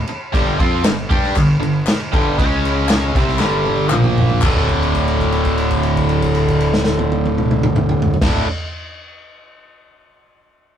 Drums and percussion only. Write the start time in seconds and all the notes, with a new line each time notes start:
0.07 crash
0.34 kick, crash
0.60 kick, crash
0.85 snare, clap, crash
1.11 kick, crash
1.24 snare
1.36 kick, clap, crash
1.63 crash
1.86 snare, clap, crash
2.13 kick, crash
2.39 kick, crash
2.65 crash
2.89 snare, clap, crash
3.15 kick, crash
3.28 snare
3.39 snare, clap
3.66 high tom
3.90 clap, mid tom
4.04 mid tom
4.18 floor tom
4.30 floor tom
4.41 kick, clap, crash
4.69 kick, crash
4.83 crash
4.95 kick, crash
5.08 crash
5.20 kick, crash
5.32 crash
5.45 kick, crash
5.58 crash
5.70 kick, crash
5.83 crash
5.97 kick, crash
6.09 crash
6.22 kick, crash
6.35 crash
6.48 kick, crash
6.60 crash
6.74 snare
6.84 snare
6.99 high tom
7.12 high tom
7.25 high tom
7.38 mid tom
7.51 mid tom
7.63 mid tom
7.76 mid tom
7.89 mid tom
8.02 floor tom
8.14 floor tom
8.21 kick, snare, crash